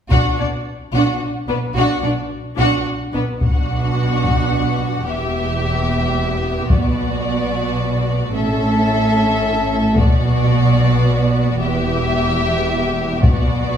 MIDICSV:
0, 0, Header, 1, 7, 480
1, 0, Start_track
1, 0, Key_signature, 2, "minor"
1, 0, Tempo, 548948
1, 98, Time_signature, 3, 2, 24, 8
1, 6818, Tempo, 543971
1, 12091, End_track
2, 0, Start_track
2, 0, Title_t, "Violin section"
2, 0, Program_c, 0, 48
2, 96, Note_on_c, 0, 78, 44
2, 321, Note_off_c, 0, 78, 0
2, 343, Note_on_c, 0, 74, 32
2, 413, Note_off_c, 0, 74, 0
2, 830, Note_on_c, 0, 78, 39
2, 1046, Note_off_c, 0, 78, 0
2, 1312, Note_on_c, 0, 71, 41
2, 1382, Note_off_c, 0, 71, 0
2, 1549, Note_on_c, 0, 78, 47
2, 1764, Note_off_c, 0, 78, 0
2, 1780, Note_on_c, 0, 74, 34
2, 1850, Note_off_c, 0, 74, 0
2, 2271, Note_on_c, 0, 78, 50
2, 2489, Note_off_c, 0, 78, 0
2, 2765, Note_on_c, 0, 71, 40
2, 2835, Note_off_c, 0, 71, 0
2, 2995, Note_on_c, 0, 78, 49
2, 4396, Note_off_c, 0, 78, 0
2, 4440, Note_on_c, 0, 76, 45
2, 5833, Note_off_c, 0, 76, 0
2, 5871, Note_on_c, 0, 74, 47
2, 7270, Note_off_c, 0, 74, 0
2, 7312, Note_on_c, 0, 76, 53
2, 8708, Note_off_c, 0, 76, 0
2, 8756, Note_on_c, 0, 74, 59
2, 10146, Note_off_c, 0, 74, 0
2, 10182, Note_on_c, 0, 76, 57
2, 11587, Note_off_c, 0, 76, 0
2, 11619, Note_on_c, 0, 74, 55
2, 12091, Note_off_c, 0, 74, 0
2, 12091, End_track
3, 0, Start_track
3, 0, Title_t, "Violin section"
3, 0, Program_c, 1, 48
3, 99, Note_on_c, 1, 66, 44
3, 322, Note_off_c, 1, 66, 0
3, 348, Note_on_c, 1, 62, 29
3, 418, Note_off_c, 1, 62, 0
3, 818, Note_on_c, 1, 66, 36
3, 1040, Note_off_c, 1, 66, 0
3, 1305, Note_on_c, 1, 59, 38
3, 1375, Note_off_c, 1, 59, 0
3, 1549, Note_on_c, 1, 66, 52
3, 1764, Note_off_c, 1, 66, 0
3, 1797, Note_on_c, 1, 62, 33
3, 1867, Note_off_c, 1, 62, 0
3, 2267, Note_on_c, 1, 66, 52
3, 2487, Note_off_c, 1, 66, 0
3, 2753, Note_on_c, 1, 59, 43
3, 2823, Note_off_c, 1, 59, 0
3, 3003, Note_on_c, 1, 66, 49
3, 4400, Note_off_c, 1, 66, 0
3, 4424, Note_on_c, 1, 67, 50
3, 5825, Note_off_c, 1, 67, 0
3, 5851, Note_on_c, 1, 66, 43
3, 7259, Note_off_c, 1, 66, 0
3, 7293, Note_on_c, 1, 69, 54
3, 8699, Note_off_c, 1, 69, 0
3, 8733, Note_on_c, 1, 66, 54
3, 10135, Note_off_c, 1, 66, 0
3, 10176, Note_on_c, 1, 67, 58
3, 11584, Note_off_c, 1, 67, 0
3, 11626, Note_on_c, 1, 66, 53
3, 12091, Note_off_c, 1, 66, 0
3, 12091, End_track
4, 0, Start_track
4, 0, Title_t, "Viola section"
4, 0, Program_c, 2, 48
4, 95, Note_on_c, 2, 62, 39
4, 320, Note_off_c, 2, 62, 0
4, 338, Note_on_c, 2, 62, 30
4, 408, Note_off_c, 2, 62, 0
4, 818, Note_on_c, 2, 62, 41
4, 1040, Note_off_c, 2, 62, 0
4, 1292, Note_on_c, 2, 62, 36
4, 1362, Note_off_c, 2, 62, 0
4, 1538, Note_on_c, 2, 62, 42
4, 1758, Note_off_c, 2, 62, 0
4, 1770, Note_on_c, 2, 62, 39
4, 1840, Note_off_c, 2, 62, 0
4, 2248, Note_on_c, 2, 62, 53
4, 2477, Note_off_c, 2, 62, 0
4, 2740, Note_on_c, 2, 62, 39
4, 2810, Note_off_c, 2, 62, 0
4, 2980, Note_on_c, 2, 62, 38
4, 4389, Note_off_c, 2, 62, 0
4, 4426, Note_on_c, 2, 59, 42
4, 7264, Note_off_c, 2, 59, 0
4, 7296, Note_on_c, 2, 61, 40
4, 8700, Note_off_c, 2, 61, 0
4, 8738, Note_on_c, 2, 59, 47
4, 11582, Note_off_c, 2, 59, 0
4, 11619, Note_on_c, 2, 59, 47
4, 12091, Note_off_c, 2, 59, 0
4, 12091, End_track
5, 0, Start_track
5, 0, Title_t, "Cello section"
5, 0, Program_c, 3, 48
5, 97, Note_on_c, 3, 47, 47
5, 167, Note_off_c, 3, 47, 0
5, 344, Note_on_c, 3, 47, 31
5, 414, Note_off_c, 3, 47, 0
5, 814, Note_on_c, 3, 47, 49
5, 884, Note_off_c, 3, 47, 0
5, 1295, Note_on_c, 3, 47, 37
5, 1365, Note_off_c, 3, 47, 0
5, 1534, Note_on_c, 3, 47, 58
5, 1604, Note_off_c, 3, 47, 0
5, 1772, Note_on_c, 3, 47, 39
5, 1842, Note_off_c, 3, 47, 0
5, 2251, Note_on_c, 3, 47, 58
5, 2321, Note_off_c, 3, 47, 0
5, 2742, Note_on_c, 3, 47, 40
5, 2812, Note_off_c, 3, 47, 0
5, 2986, Note_on_c, 3, 47, 46
5, 4392, Note_off_c, 3, 47, 0
5, 4432, Note_on_c, 3, 40, 48
5, 5852, Note_on_c, 3, 47, 50
5, 5864, Note_off_c, 3, 40, 0
5, 7266, Note_off_c, 3, 47, 0
5, 7297, Note_on_c, 3, 45, 55
5, 8708, Note_off_c, 3, 45, 0
5, 8733, Note_on_c, 3, 47, 59
5, 10166, Note_on_c, 3, 40, 60
5, 10170, Note_off_c, 3, 47, 0
5, 11585, Note_off_c, 3, 40, 0
5, 11609, Note_on_c, 3, 47, 61
5, 12091, Note_off_c, 3, 47, 0
5, 12091, End_track
6, 0, Start_track
6, 0, Title_t, "Double bass section"
6, 0, Program_c, 4, 48
6, 97, Note_on_c, 4, 35, 44
6, 167, Note_off_c, 4, 35, 0
6, 343, Note_on_c, 4, 35, 31
6, 412, Note_off_c, 4, 35, 0
6, 812, Note_on_c, 4, 35, 49
6, 882, Note_off_c, 4, 35, 0
6, 1295, Note_on_c, 4, 35, 37
6, 1365, Note_off_c, 4, 35, 0
6, 1532, Note_on_c, 4, 35, 51
6, 1602, Note_off_c, 4, 35, 0
6, 1777, Note_on_c, 4, 35, 38
6, 1847, Note_off_c, 4, 35, 0
6, 2255, Note_on_c, 4, 35, 62
6, 2325, Note_off_c, 4, 35, 0
6, 2735, Note_on_c, 4, 35, 39
6, 2805, Note_off_c, 4, 35, 0
6, 2977, Note_on_c, 4, 35, 40
6, 4387, Note_off_c, 4, 35, 0
6, 4420, Note_on_c, 4, 28, 46
6, 5858, Note_off_c, 4, 28, 0
6, 5858, Note_on_c, 4, 35, 48
6, 7269, Note_off_c, 4, 35, 0
6, 7300, Note_on_c, 4, 33, 46
6, 8709, Note_off_c, 4, 33, 0
6, 8739, Note_on_c, 4, 35, 58
6, 10173, Note_off_c, 4, 35, 0
6, 10175, Note_on_c, 4, 28, 54
6, 11590, Note_off_c, 4, 28, 0
6, 11614, Note_on_c, 4, 35, 51
6, 12091, Note_off_c, 4, 35, 0
6, 12091, End_track
7, 0, Start_track
7, 0, Title_t, "Taiko and cinematic ensemble drums"
7, 99, Note_on_c, 9, 41, 37
7, 187, Note_off_c, 9, 41, 0
7, 2988, Note_on_c, 9, 41, 43
7, 3076, Note_off_c, 9, 41, 0
7, 3708, Note_on_c, 9, 41, 33
7, 3795, Note_off_c, 9, 41, 0
7, 5858, Note_on_c, 9, 41, 43
7, 5946, Note_off_c, 9, 41, 0
7, 8730, Note_on_c, 9, 41, 52
7, 8818, Note_off_c, 9, 41, 0
7, 11614, Note_on_c, 9, 41, 53
7, 11702, Note_off_c, 9, 41, 0
7, 12091, End_track
0, 0, End_of_file